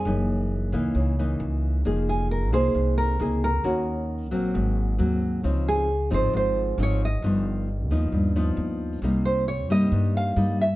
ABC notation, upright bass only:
X:1
M:4/4
L:1/8
Q:1/4=134
K:Fm
V:1 name="Upright bass" clef=bass
_G,,,3 D,, D,,2 D,,2 | F,,,3 C,, C,,2 D,,2 | E,,3 B,,, A,,,2 E,,2 | D,,3 A,,, A,,,2 A,,,2 |
G,,,3 ^D,, D,,2 D,,2 | C,,3 G,, G,,2 G,,2 |]